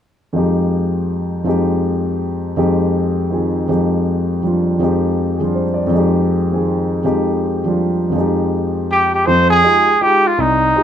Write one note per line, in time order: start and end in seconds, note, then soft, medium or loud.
0.33 1.43 F2 medium
0.33 1.44 F3 soft
0.33 1.45 G#3 soft
0.33 1.46 D#4 soft
0.38 1.47 G4 medium
1.44 2.55 F2 medium
1.44 2.56 F3 soft
1.44 2.56 G#3 soft
1.44 2.57 D#4 soft
1.49 2.57 G4 medium
2.57 3.67 F2 medium
2.57 3.67 F3 medium
2.57 3.68 G#3 medium
2.57 3.68 D#4 soft
2.57 3.68 G4 medium
3.30 3.68 D#3 soft
3.30 3.68 C4 soft
3.30 3.69 F4 soft
3.30 3.70 G#4 soft
3.68 4.77 F2 soft
3.68 4.41 F3 soft
3.68 4.79 G#3 soft
3.68 4.81 D#4 soft
3.68 4.81 G4 medium
4.43 4.79 F3 soft
4.43 4.81 G3 soft
4.43 4.81 D4 soft
4.43 4.82 F4 soft
4.79 5.85 F2 medium
4.79 5.39 F3 soft
4.79 5.91 G#3 soft
4.79 5.93 D#4 soft
4.84 5.94 G4 medium
5.37 5.88 F3 soft
5.37 5.92 G3 soft
5.37 5.62 G#4 soft
5.42 5.92 D4 soft
5.42 5.93 F4 soft
5.55 5.83 C5 soft
5.74 5.99 D5 soft
5.87 7.01 F2 medium
5.87 7.02 F3 medium
5.92 7.03 G#3 medium
5.92 7.04 D#4 soft
5.98 7.04 G4 medium
6.52 7.03 D#3 soft
6.52 7.03 C4 soft
6.52 7.04 F4 soft
6.52 7.04 G#4 soft
7.04 8.08 F2 medium
7.04 7.63 F3 soft
7.04 8.14 G#3 soft
7.04 8.16 D#4 soft
7.04 8.16 G4 medium
7.65 8.11 F3 soft
7.65 8.15 G3 soft
7.65 8.16 D4 soft
7.65 8.16 F4 soft
8.10 9.24 F2 medium
8.10 9.25 F3 medium
8.16 9.27 G#3 soft
8.16 9.28 D#4 medium
8.21 9.29 G4 medium
8.91 9.12 G4 medium
9.14 9.28 G4 medium
9.26 9.59 F2 medium
9.26 9.59 F3 medium
9.26 9.49 C5 medium
9.50 10.03 G#4 loud
9.64 9.89 G#3 soft
9.64 9.89 D#4 soft
9.64 9.89 F4 soft
9.64 9.89 G4 medium
10.01 10.26 G#3 soft
10.01 10.26 D#4 soft
10.01 10.26 F4 soft
10.01 10.28 G4 medium
10.01 10.26 G4 medium
10.27 10.42 F4 medium
10.38 10.70 C2 medium
10.38 10.83 D#4 medium
10.76 10.83 G#3 medium
10.76 10.83 D#4 soft
10.76 10.83 F4 soft
10.76 10.83 G4 medium